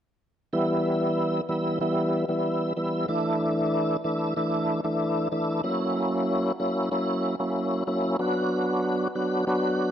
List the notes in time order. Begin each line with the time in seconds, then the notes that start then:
0.53 E3 G3 B3 E4
1.49 E3 G3 B3 E4
1.81 E3 G3 B3 E4
2.28 E3 G3 B3 E4
2.77 E3 G3 B3 E4
3.08 E3 A3 D4 E4
4.04 E3 A3 D4 E4
4.36 E3 A3 D4 E4
4.84 E3 A3 D4 E4
5.32 E3 A3 D4 E4
5.64 F#3 A#3 C#4 E4
6.60 F#3 A#3 C#4 E4
6.91 F#3 A#3 C#4 E4
7.39 F#3 A#3 C#4 E4
7.87 F#3 A#3 C#4 E4
8.19 F#3 B3 D4 F#4
9.15 F#3 B3 D4 F#4
9.47 F#3 B3 D4 F#4